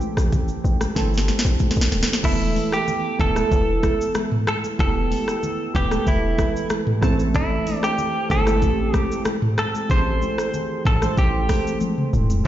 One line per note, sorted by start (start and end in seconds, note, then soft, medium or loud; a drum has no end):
0.00 0.95 E3 medium
0.00 0.96 A3 medium
0.00 0.97 C4 medium
0.00 0.80 G4 loud
0.00 0.98 A4 medium
0.00 high conga medium
0.00 shaker soft
0.17 0.51 A1 medium
0.17 cross-stick medium
0.17 shaker loud
0.32 kick loud
0.32 low conga medium
0.32 shaker medium
0.48 shaker medium
0.64 0.87 A1 medium
0.64 shaker soft
0.81 cross-stick medium
0.81 high conga medium
0.81 shaker medium
0.95 1.31 G1 medium
0.95 2.07 E3 medium
0.95 2.07 A3 medium
0.95 2.07 C4 medium
0.95 2.08 A4 medium
0.95 kick loud
0.95 snare medium
0.95 shaker medium
1.14 snare medium
1.14 shaker medium
1.28 snare medium
1.28 high conga medium
1.28 shaker medium
1.39 snare medium
1.45 1.56 A1 medium
1.45 shaker medium
1.59 kick medium
1.59 high conga medium
1.59 shaker medium
1.71 snare medium
1.76 1.88 A1 medium
1.76 shaker medium
1.81 snare medium
1.92 2.04 D1 medium
1.92 snare medium
1.92 high conga medium
1.92 shaker medium
2.03 snare medium
2.09 shaker medium
2.13 snare medium
2.23 2.58 E1 loud
2.23 3.07 E3 medium
2.23 3.07 A3 medium
2.23 3.07 B3 medium
2.23 2.74 E4 medium
2.23 3.08 A4 medium
2.23 kick loud
2.23 crash medium
2.23 low conga medium
2.23 shaker medium
2.55 open hi-hat medium
2.55 high conga medium
2.55 shaker soft
2.72 3.20 G4 medium
2.72 cross-stick medium
2.72 shaker medium
2.88 low conga medium
2.88 shaker medium
3.19 3.42 D1 medium
3.19 3.33 E3 medium
3.19 3.34 A3 medium
3.19 3.34 B3 medium
3.19 3.35 E4 medium
3.19 4.12 A4 loud
3.19 kick loud
3.19 low conga medium
3.19 shaker medium
3.35 4.45 E3 medium
3.35 4.46 A3 medium
3.35 4.46 B3 medium
3.35 4.47 A4 medium
3.35 cross-stick medium
3.35 high conga medium
3.35 shaker medium
3.52 3.86 E1 loud
3.52 kick medium
3.52 shaker medium
3.83 kick medium
3.83 cross-stick medium
3.83 high conga medium
3.83 shaker medium
4.01 shaker medium
4.15 cross-stick loud
4.15 high conga medium
4.15 shaker medium
4.32 mid tom loud
4.47 4.57 A4 loud
4.47 cross-stick loud
4.47 high conga medium
4.47 shaker medium
4.64 high conga soft
4.64 shaker medium
4.78 5.14 E1 loud
4.78 5.62 E3 medium
4.78 5.62 A3 medium
4.78 5.63 B3 medium
4.78 5.63 G4 medium
4.78 5.76 A4 loud
4.78 kick loud
4.78 low conga medium
4.78 shaker medium
5.11 open hi-hat medium
5.11 high conga medium
5.11 shaker soft
5.28 cross-stick medium
5.28 shaker medium
5.43 low conga medium
5.43 shaker medium
5.74 5.97 D1 medium
5.74 5.89 E3 medium
5.74 5.89 A3 medium
5.74 5.90 B3 medium
5.74 6.08 G4 medium
5.74 5.90 B4 medium
5.74 kick medium
5.74 low conga medium
5.74 shaker soft
5.90 7.00 E3 medium
5.90 7.01 A3 medium
5.90 7.01 B3 medium
5.90 7.02 A4 medium
5.90 cross-stick medium
5.90 high conga medium
5.90 shaker medium
6.07 6.41 E1 medium
6.07 6.67 E4 medium
6.07 kick medium
6.07 shaker medium
6.38 kick medium
6.38 cross-stick medium
6.38 high conga medium
6.38 shaker medium
6.57 shaker medium
6.70 cross-stick loud
6.70 high conga medium
6.70 shaker medium
6.87 mid tom loud
7.01 7.60 A1 loud
7.01 8.13 E3 loud
7.01 8.13 A3 medium
7.01 8.14 C4 medium
7.01 8.14 A4 loud
7.01 cross-stick medium
7.01 high conga medium
7.01 shaker medium
7.19 high conga medium
7.19 shaker medium
7.34 7.85 E4 medium
7.34 kick loud
7.34 low conga medium
7.34 shaker medium
7.66 open hi-hat soft
7.66 high conga medium
7.66 shaker medium
7.83 8.28 G4 medium
7.83 cross-stick medium
7.83 shaker medium
7.98 low conga medium
7.98 shaker medium
8.29 8.64 G1 medium
8.29 8.44 E3 medium
8.29 8.44 A3 medium
8.29 8.45 C4 medium
8.29 8.96 A4 loud
8.29 8.45 A4 medium
8.29 kick loud
8.29 low conga medium
8.29 shaker soft
8.46 9.56 E3 medium
8.46 9.56 A3 medium
8.46 9.57 C4 medium
8.46 9.57 G4 medium
8.46 cross-stick medium
8.46 high conga medium
8.46 shaker medium
8.62 8.97 A1 loud
8.62 kick medium
8.62 shaker medium
8.94 9.23 G4 loud
8.94 kick medium
8.94 cross-stick medium
8.94 high conga medium
8.94 shaker medium
9.12 shaker medium
9.25 cross-stick loud
9.25 high conga medium
9.25 shaker medium
9.42 mid tom loud
9.58 9.91 A4 loud
9.58 cross-stick loud
9.58 high conga medium
9.58 shaker medium
9.75 high conga medium
9.75 shaker medium
9.89 10.24 A1 loud
9.89 10.73 E3 medium
9.89 10.73 A3 medium
9.89 10.73 C4 medium
9.89 9.97 G#4 medium
9.89 10.82 C5 loud
9.89 kick loud
9.89 low conga medium
9.89 shaker medium
9.98 10.77 A4 medium
10.21 high conga medium
10.21 shaker soft
10.38 cross-stick medium
10.38 shaker medium
10.54 low conga medium
10.54 shaker medium
10.84 11.08 A1 medium
10.84 10.99 E3 medium
10.84 11.00 A3 medium
10.84 11.00 C4 medium
10.84 11.16 A4 medium
10.84 11.01 A4 medium
10.84 kick loud
10.84 mid tom medium
10.84 shaker medium
11.01 12.11 E3 medium
11.01 12.12 A3 medium
11.01 12.12 C4 medium
11.01 12.13 C5 medium
11.01 cross-stick medium
11.01 high conga medium
11.01 shaker medium
11.17 11.52 A1 loud
11.17 11.78 G4 medium
11.17 kick medium
11.17 shaker medium
11.49 kick medium
11.49 cross-stick medium
11.49 open hi-hat medium
11.49 high conga medium
11.49 shaker medium
11.67 shaker medium
11.80 high tom medium
11.80 high conga medium
11.80 shaker medium
11.98 mid tom medium
12.13 12.47 D1 medium
12.13 mid tom medium
12.13 high conga medium
12.13 shaker medium
12.30 floor tom medium
12.30 high conga medium
12.30 shaker medium
12.44 12.47 E3 medium